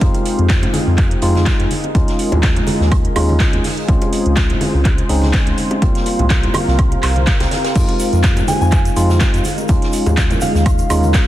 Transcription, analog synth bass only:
0, 0, Header, 1, 2, 480
1, 0, Start_track
1, 0, Key_signature, -4, "minor"
1, 0, Tempo, 483871
1, 13, Time_signature, 4, 2, 24, 8
1, 11181, End_track
2, 0, Start_track
2, 0, Title_t, "Analog synth bass"
2, 0, Program_c, 0, 38
2, 13, Note_on_c, 0, 41, 93
2, 92, Note_off_c, 0, 41, 0
2, 383, Note_on_c, 0, 41, 82
2, 664, Note_off_c, 0, 41, 0
2, 863, Note_on_c, 0, 41, 83
2, 1144, Note_off_c, 0, 41, 0
2, 1213, Note_on_c, 0, 41, 84
2, 1501, Note_off_c, 0, 41, 0
2, 1584, Note_on_c, 0, 41, 86
2, 1650, Note_off_c, 0, 41, 0
2, 1933, Note_on_c, 0, 39, 95
2, 2012, Note_off_c, 0, 39, 0
2, 2303, Note_on_c, 0, 39, 84
2, 2584, Note_off_c, 0, 39, 0
2, 2783, Note_on_c, 0, 39, 84
2, 3064, Note_off_c, 0, 39, 0
2, 3133, Note_on_c, 0, 39, 86
2, 3421, Note_off_c, 0, 39, 0
2, 3504, Note_on_c, 0, 39, 89
2, 3570, Note_off_c, 0, 39, 0
2, 3853, Note_on_c, 0, 37, 95
2, 3932, Note_off_c, 0, 37, 0
2, 4223, Note_on_c, 0, 37, 83
2, 4504, Note_off_c, 0, 37, 0
2, 4703, Note_on_c, 0, 37, 85
2, 4984, Note_off_c, 0, 37, 0
2, 5053, Note_on_c, 0, 37, 89
2, 5341, Note_off_c, 0, 37, 0
2, 5423, Note_on_c, 0, 37, 88
2, 5490, Note_off_c, 0, 37, 0
2, 5773, Note_on_c, 0, 36, 91
2, 5852, Note_off_c, 0, 36, 0
2, 6143, Note_on_c, 0, 36, 81
2, 6424, Note_off_c, 0, 36, 0
2, 6623, Note_on_c, 0, 36, 88
2, 6904, Note_off_c, 0, 36, 0
2, 6972, Note_on_c, 0, 36, 96
2, 7261, Note_off_c, 0, 36, 0
2, 7343, Note_on_c, 0, 36, 100
2, 7410, Note_off_c, 0, 36, 0
2, 7693, Note_on_c, 0, 41, 93
2, 7772, Note_off_c, 0, 41, 0
2, 8063, Note_on_c, 0, 41, 83
2, 8344, Note_off_c, 0, 41, 0
2, 8543, Note_on_c, 0, 41, 85
2, 8824, Note_off_c, 0, 41, 0
2, 8892, Note_on_c, 0, 41, 89
2, 9181, Note_off_c, 0, 41, 0
2, 9263, Note_on_c, 0, 41, 88
2, 9329, Note_off_c, 0, 41, 0
2, 9613, Note_on_c, 0, 39, 96
2, 9692, Note_off_c, 0, 39, 0
2, 9983, Note_on_c, 0, 39, 85
2, 10264, Note_off_c, 0, 39, 0
2, 10463, Note_on_c, 0, 39, 86
2, 10744, Note_off_c, 0, 39, 0
2, 10813, Note_on_c, 0, 39, 88
2, 11101, Note_off_c, 0, 39, 0
2, 11181, End_track
0, 0, End_of_file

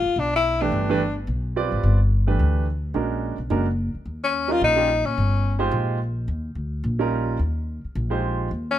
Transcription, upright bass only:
0, 0, Header, 1, 3, 480
1, 0, Start_track
1, 0, Tempo, 277521
1, 1263, Time_signature, 4, 2, 24, 8
1, 15200, End_track
2, 0, Start_track
2, 0, Title_t, "Upright bass"
2, 0, Program_c, 0, 32
2, 277, Note_on_c, 0, 35, 83
2, 1201, Note_off_c, 0, 35, 0
2, 1242, Note_on_c, 0, 31, 81
2, 2163, Note_off_c, 0, 31, 0
2, 2199, Note_on_c, 0, 35, 83
2, 2917, Note_off_c, 0, 35, 0
2, 2971, Note_on_c, 0, 32, 67
2, 3162, Note_off_c, 0, 32, 0
2, 3173, Note_on_c, 0, 31, 85
2, 4089, Note_off_c, 0, 31, 0
2, 4140, Note_on_c, 0, 38, 84
2, 5053, Note_off_c, 0, 38, 0
2, 5086, Note_on_c, 0, 34, 69
2, 5801, Note_off_c, 0, 34, 0
2, 5846, Note_on_c, 0, 35, 66
2, 6039, Note_off_c, 0, 35, 0
2, 6055, Note_on_c, 0, 30, 86
2, 6765, Note_off_c, 0, 30, 0
2, 7013, Note_on_c, 0, 39, 71
2, 7929, Note_off_c, 0, 39, 0
2, 7982, Note_on_c, 0, 34, 88
2, 8689, Note_off_c, 0, 34, 0
2, 8730, Note_on_c, 0, 46, 67
2, 8921, Note_off_c, 0, 46, 0
2, 8953, Note_on_c, 0, 31, 89
2, 9860, Note_off_c, 0, 31, 0
2, 9884, Note_on_c, 0, 34, 92
2, 10805, Note_off_c, 0, 34, 0
2, 10857, Note_on_c, 0, 39, 83
2, 11306, Note_off_c, 0, 39, 0
2, 11334, Note_on_c, 0, 38, 72
2, 11784, Note_off_c, 0, 38, 0
2, 11823, Note_on_c, 0, 34, 86
2, 12736, Note_off_c, 0, 34, 0
2, 12786, Note_on_c, 0, 39, 80
2, 13493, Note_off_c, 0, 39, 0
2, 13757, Note_on_c, 0, 34, 89
2, 14664, Note_off_c, 0, 34, 0
2, 14719, Note_on_c, 0, 39, 78
2, 15200, Note_off_c, 0, 39, 0
2, 15200, End_track
3, 0, Start_track
3, 0, Title_t, "Muted upright bass strokes"
3, 98, Note_on_c, 9, 29, 36
3, 271, Note_off_c, 9, 29, 0
3, 6823, Note_on_c, 9, 29, 41
3, 6996, Note_off_c, 9, 29, 0
3, 13568, Note_on_c, 9, 29, 36
3, 13741, Note_off_c, 9, 29, 0
3, 15200, End_track
0, 0, End_of_file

